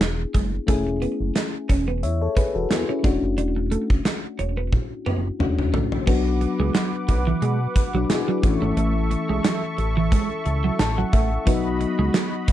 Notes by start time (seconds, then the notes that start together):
Already playing: B3 D4 E4 G#4
0.01 E1, snare, closed hi-hat
0.34 F#1 G#3, kick, closed hi-hat
0.67 E1 A3 C#4 E4 G#4, kick, closed hi-hat
0.87 muted clean electric guitar stroke
1.02 B3, closed hi-hat
1.20 F#1
1.36 muted clean electric guitar stroke, snare, closed hi-hat
1.69 E1 C#4, kick, closed hi-hat
1.88 B3
2.03 E2 C#5 E5, closed hi-hat
2.22 A4 C#5
2.37 B3 G#4 B4, kick, closed hi-hat
2.55 E1 F#4 A4
2.70 E2 E4 G#4, muted clean electric guitar stroke, snare, closed hi-hat
2.89 C#4 E4
3.03 E1 A3 C#4 D4 F#4, kick, closed hi-hat
3.22 F#1
3.38 E1 D4, closed hi-hat
3.56 muted clean electric guitar stroke
3.72 A3, closed hi-hat
3.90 F#1, kick
4.05 muted clean electric guitar stroke, snare, closed hi-hat
4.39 E1 C#4, closed hi-hat
4.57 B3
4.73 kick, high tom
5.06 F#1 B3, mid tom
5.39 E1 A3 C#4 D4 F#4, mid tom
5.59 mid tom
5.73 A1 A3, floor tom
5.92 floor tom
6.06 B1 F#3 B3 D4 F#4 B4 F#5 D6, kick, crash
6.41 muted clean electric guitar stroke, closed hi-hat
6.59 C#2 G#3
6.75 F#3, snare, closed hi-hat
7.08 B1, muted clean electric guitar stroke, kick, closed hi-hat
7.27 E3
7.42 B2 G#3, closed hi-hat
7.76 muted clean electric guitar stroke, kick, closed hi-hat
7.94 B1 F#3 D4 F#4
8.09 B2 E4 G#4, snare, closed hi-hat
8.28 F#3 D4 F#4
8.43 A1 E3 A3 C#4 E4 A4 E5 C#6, muted clean electric guitar stroke, kick, closed hi-hat
8.62 G#1 A3
8.77 A1 A3, closed hi-hat
9.11 muted clean electric guitar stroke, closed hi-hat
9.29 B1 G#3
9.44 F#3, snare, closed hi-hat
9.78 A1, muted clean electric guitar stroke, closed hi-hat
9.97 E3
10.12 G#3, kick, closed hi-hat
10.46 C#2, muted clean electric guitar stroke, closed hi-hat
10.64 F#3
10.79 A1 A5, muted clean electric guitar stroke, snare, closed hi-hat
10.98 F#3 F#5
11.13 A1 A3 E5, kick, closed hi-hat
11.46 B1 F#3 B3 D#4 F#4 D#5 B5, kick, closed hi-hat
11.81 muted clean electric guitar stroke, closed hi-hat
11.99 C#2 G#3
12.14 F#3, snare, closed hi-hat
12.48 B1, muted clean electric guitar stroke, kick, closed hi-hat